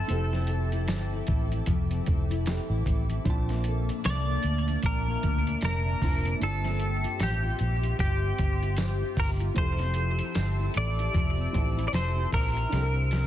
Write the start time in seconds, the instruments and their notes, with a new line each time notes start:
Already playing: steel-string acoustic guitar C4 E4 A4, clean electric guitar A4, ambient pad A4 E5 G5
0.08 fingered electric bass F1, steel-string acoustic guitar F3, upright piano C4 E4 G4, ambient pad D6, closed hi-hat
0.13 upright piano A4
0.33 steel-string acoustic guitar C4, snare
0.47 steel-string acoustic guitar A4, closed hi-hat
0.72 steel-string acoustic guitar E4, closed hi-hat
0.88 fingered electric bass G1, steel-string acoustic guitar C4, snare, closed hi-hat, tambourine
1.12 steel-string acoustic guitar E4
1.27 fingered electric bass A1, steel-string acoustic guitar A4, kick, closed hi-hat
1.52 steel-string acoustic guitar E4, closed hi-hat
1.66 fingered electric bass F1, steel-string acoustic guitar F3, kick, closed hi-hat
1.90 steel-string acoustic guitar C4, closed hi-hat
2.06 fingered electric bass F1, steel-string acoustic guitar A4, kick, closed hi-hat
2.30 steel-string acoustic guitar E4, closed hi-hat
2.46 steel-string acoustic guitar C4, upright piano C4 E4 G4 A4, snare, closed hi-hat, tambourine
2.70 fingered electric bass A1, steel-string acoustic guitar E4
2.86 fingered electric bass A1, steel-string acoustic guitar A4, kick, closed hi-hat
3.10 steel-string acoustic guitar E4, closed hi-hat
3.25 fingered electric bass A#1, steel-string acoustic guitar A#2, ambient pad A#3 A5, upright piano C4 D4 F4, kick, closed hi-hat
3.30 upright piano A5
3.49 steel-string acoustic guitar A#3, snare, closed hi-hat
3.64 steel-string acoustic guitar A4, closed hi-hat
3.89 steel-string acoustic guitar D4, closed hi-hat
4.04 fingered electric bass C2, steel-string acoustic guitar A#3, clean electric guitar D5, snare, closed hi-hat, tambourine
4.28 steel-string acoustic guitar D4
4.43 fingered electric bass D2, closed hi-hat
4.68 steel-string acoustic guitar D4, closed hi-hat
4.83 fingered electric bass A#1, steel-string acoustic guitar A#2, clean electric guitar A#4, kick, closed hi-hat
5.07 steel-string acoustic guitar A#3
5.23 fingered electric bass D2, kick, closed hi-hat
5.46 steel-string acoustic guitar D4, closed hi-hat
5.61 fingered electric bass F1, steel-string acoustic guitar A#3, clean electric guitar A#4, snare, closed hi-hat, tambourine
5.85 steel-string acoustic guitar D4
6.02 fingered electric bass F1, upright piano C4 D4 F4 A5, kick, open hi-hat
6.25 steel-string acoustic guitar D4, closed hi-hat
6.40 fingered electric bass G1, steel-string acoustic guitar G2, upright piano C4 D4 F4, ambient pad G4 C6 D6, clean electric guitar A4, closed hi-hat
6.45 upright piano A5
6.64 steel-string acoustic guitar C4, snare, closed hi-hat
6.80 steel-string acoustic guitar G4, closed hi-hat
7.04 steel-string acoustic guitar F4, closed hi-hat
7.20 fingered electric bass A1, steel-string acoustic guitar C4, clean electric guitar G4, snare, closed hi-hat, tambourine
7.43 steel-string acoustic guitar F4
7.59 fingered electric bass A#1, steel-string acoustic guitar G4, closed hi-hat
7.83 steel-string acoustic guitar F4, closed hi-hat
7.99 fingered electric bass G1, steel-string acoustic guitar G2, clean electric guitar G4, kick, closed hi-hat
8.23 steel-string acoustic guitar C4
8.38 fingered electric bass G1, steel-string acoustic guitar G4, kick, closed hi-hat
8.62 steel-string acoustic guitar F4, closed hi-hat
8.77 steel-string acoustic guitar C4, snare, closed hi-hat, tambourine
9.01 steel-string acoustic guitar F4
9.17 fingered electric bass G1, steel-string acoustic guitar G4, clean electric guitar A#4, kick, open hi-hat
9.40 steel-string acoustic guitar F4, closed hi-hat
9.54 fingered electric bass F1, steel-string acoustic guitar F3, upright piano C4 E4 G4, clean electric guitar C5, ambient pad E5 A5 E6, kick, closed hi-hat
9.59 upright piano A4
9.79 steel-string acoustic guitar C4, snare, closed hi-hat
9.94 steel-string acoustic guitar A4, closed hi-hat
10.19 steel-string acoustic guitar E4, closed hi-hat
10.35 fingered electric bass G1, steel-string acoustic guitar C4, snare, closed hi-hat, tambourine
10.59 steel-string acoustic guitar E4
10.74 fingered electric bass A1, steel-string acoustic guitar A4, clean electric guitar D5, closed hi-hat
10.99 steel-string acoustic guitar E4, closed hi-hat
11.13 fingered electric bass F1, steel-string acoustic guitar F3, kick, closed hi-hat
11.37 steel-string acoustic guitar C4
11.52 fingered electric bass A1, upright piano C4 E4 G4 A5, steel-string acoustic guitar A4, kick, closed hi-hat
11.77 steel-string acoustic guitar E4, closed hi-hat
11.88 steel-string acoustic guitar C4, clean electric guitar D5
11.93 fingered electric bass F1, clean electric guitar C5, snare, closed hi-hat, tambourine
12.16 steel-string acoustic guitar E4
12.33 fingered electric bass A#1, clean electric guitar A#4, kick, open hi-hat
12.56 steel-string acoustic guitar E4, closed hi-hat
12.69 fingered electric bass C2, steel-string acoustic guitar C3, upright piano D4 E4 G4, ambient pad C5 A#5, closed hi-hat
12.73 upright piano A4, snare
12.81 upright piano A#4
12.95 steel-string acoustic guitar C4
13.11 steel-string acoustic guitar A#4, snare, closed hi-hat